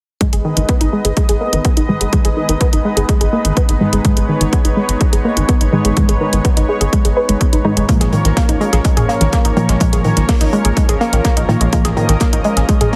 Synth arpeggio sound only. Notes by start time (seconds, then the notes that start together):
0.21 G#3
0.33 G#4
0.45 D#3
0.57 D#3
0.69 B3
0.81 D#4
0.93 G#3
1.05 G#4
1.17 G#3
1.29 G#4
1.41 A#3
1.53 D#3
1.65 B3
1.77 D#4
1.89 D#3
2.01 G#3
2.13 G#3
2.25 G#4
2.37 D#3
2.49 D#3
2.61 B3
2.73 D#4
2.85 G#3
2.97 G#4
3.09 G#3
3.21 G#4
3.33 A#3
3.45 D#3
3.57 B3
3.69 D#4
3.81 D#3
3.93 G#3
4.05 G#3
4.17 G#4
4.29 D#3
4.41 D#3
4.53 B3
4.65 D#4
4.77 G#3
4.89 G#4
5.01 G#3
5.13 G#4
5.25 A#3
5.37 D#3
5.49 B3
5.61 D#4
5.73 D#3
5.85 G#3
5.97 G#3
6.09 G#4
6.21 D#3
6.33 D#3
6.45 B3
6.57 D#4
6.69 G#3
6.81 G#4
6.93 G#3
7.05 G#4
7.17 B4
7.29 G#3
7.41 B3
7.53 D#4
7.65 D#4
7.77 G#3
7.89 G#3
8.01 G#4
8.13 D#3
8.25 D#3
8.37 A#3
8.49 D#4
8.61 G#3
8.73 G#4
8.85 G#3
8.97 G#4
9.09 A#3
9.21 D#3
9.33 A#3
9.45 D#4
9.57 D#3
9.69 G#3
9.81 G#3
9.93 G#4
10.05 D#3
10.17 D#3
10.29 A#3
10.41 D#4
10.53 G#3
10.65 G#4
10.77 G#3
10.89 G#4
11.01 A#3
11.13 D#3
11.25 A#3
11.37 D#4
11.49 D#3
11.61 G#3
11.73 G#3
11.85 G#4
11.97 D#3
12.09 D#3
12.21 A#3
12.33 D#4
12.45 G#3
12.57 G#4
12.69 G#3
12.81 G#4